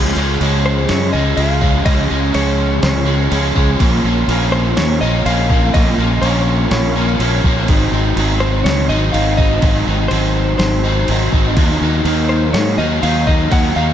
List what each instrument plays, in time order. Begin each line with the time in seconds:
Already playing: fingered electric bass C#2, overdriven electric guitar C#3 F3 G#3 C#4
0.05 snare
0.16 fingered electric bass C#2, overdriven electric guitar F3 G#3 C#4
0.41 fingered electric bass C#2, overdriven electric guitar C#3 F3 G#3 C#4, crash
0.66 clean electric guitar C5
0.89 fingered electric bass F#2, clean electric guitar C#5, snare, crash
1.13 fingered electric bass C#2, overdriven electric guitar F3 G#3 C#4, clean electric guitar D#5
1.36 fingered electric bass C#2, overdriven electric guitar C#3 F3 G#3 C#4, clean electric guitar F5, crash
1.61 overdriven electric guitar F3 G#3 C#4, kick
1.85 fingered electric bass C#2, overdriven electric guitar C#3 F3 G#3 C#4, clean electric guitar D#5, kick, crash
2.10 fingered electric bass C#2, overdriven electric guitar F3 G#3 C#4
2.34 fingered electric bass C#2, overdriven electric guitar C#3 F3 G#3 C#4, clean electric guitar C#5, crash
2.83 fingered electric bass C#2, clean electric guitar C#5, snare, crash
3.05 overdriven electric guitar F3 G#3 C#4
3.31 fingered electric bass C#2, overdriven electric guitar C#3 F3 G#3 C#4, crash
3.55 fingered electric bass C#2, overdriven electric guitar F3 G#3 C#4, kick
3.79 fingered electric bass A#1, overdriven electric guitar A#2 F3 A#3 C#4, kick, crash
4.04 fingered electric bass A#1, overdriven electric guitar F3 A#3 C#4
4.28 fingered electric bass A#1, overdriven electric guitar A#2 F3 A#3 C#4, crash
4.52 clean electric guitar C5
4.77 fingered electric bass D#2, clean electric guitar C#5, snare, crash
5.01 fingered electric bass A#1, overdriven electric guitar F3 A#3 C#4, clean electric guitar D#5
5.25 fingered electric bass A#1, overdriven electric guitar A#2 F3 A#3 C#4, clean electric guitar F5, crash
5.50 overdriven electric guitar F3 A#3 C#4, kick
5.74 fingered electric bass A#1, overdriven electric guitar A#2 F3 A#3 C#4, clean electric guitar D#5, kick, crash
5.98 fingered electric bass A#1, overdriven electric guitar F3 A#3 C#4
6.22 fingered electric bass A#1, overdriven electric guitar A#2 F3 A#3 C#4, clean electric guitar C#5, crash
6.71 fingered electric bass A#1, clean electric guitar C#5, snare, crash
6.96 overdriven electric guitar F3 A#3 C#4
7.20 fingered electric bass A#1, overdriven electric guitar A#2 F3 A#3 C#4, crash
7.44 fingered electric bass A#1, overdriven electric guitar F3 A#3 C#4, kick
7.68 fingered electric bass G#1, overdriven electric guitar G#2 D#3 F#3 C4 D#4, kick, crash
7.92 fingered electric bass G#1, overdriven electric guitar F#3 C4 D#4
8.16 fingered electric bass G#1, overdriven electric guitar D#3 F#3 C4 D#4, crash
8.40 clean electric guitar C5
8.64 fingered electric bass C#2, clean electric guitar C#5, snare, crash
8.89 fingered electric bass G#1, overdriven electric guitar F#3 C4 D#4, clean electric guitar D#5
9.13 fingered electric bass G#1, overdriven electric guitar D#3 F#3 C4 D#4, clean electric guitar F5, crash
9.37 overdriven electric guitar F#3 C4 D#4, clean electric guitar D#5, kick
9.62 fingered electric bass G#1, overdriven electric guitar G#2 D#3 F#3 C4 D#4, kick, crash
9.87 fingered electric bass G#1, overdriven electric guitar F#3 C4 D#4
10.08 fingered electric bass G#1, overdriven electric guitar D#3 F#3, clean electric guitar C5, crash
10.13 overdriven electric guitar C4 D#4
10.58 fingered electric bass G#1, clean electric guitar C5, snare, crash
10.84 overdriven electric guitar F#3 C4 D#4
11.08 fingered electric bass G#1, overdriven electric guitar D#3 F#3 C4 D#4, crash
11.33 fingered electric bass G#1, overdriven electric guitar F#3 C4 D#4, kick
11.57 fingered electric bass D#2, overdriven electric guitar D#3 F#3 A#3 D#4, kick, crash
11.70 snare
11.81 fingered electric bass D#2, overdriven electric guitar F#3 A#3 D#4
12.05 fingered electric bass D#2, overdriven electric guitar D#3 F#3 A#3 D#4, crash
12.29 clean electric guitar C5
12.53 fingered electric bass G#2, clean electric guitar C#5, snare, crash
12.78 fingered electric bass D#2, overdriven electric guitar F#3 A#3 D#4, clean electric guitar D#5
13.02 fingered electric bass D#2, overdriven electric guitar D#3 F#3 A#3 D#4, clean electric guitar F5, crash
13.27 overdriven electric guitar F#3 A#3 D#4, clean electric guitar D#5, kick
13.51 fingered electric bass D#2, overdriven electric guitar D#3 F#3 A#3 D#4, clean electric guitar F#5, kick, crash
13.76 fingered electric bass D#2, overdriven electric guitar F#3 A#3 D#4, clean electric guitar F5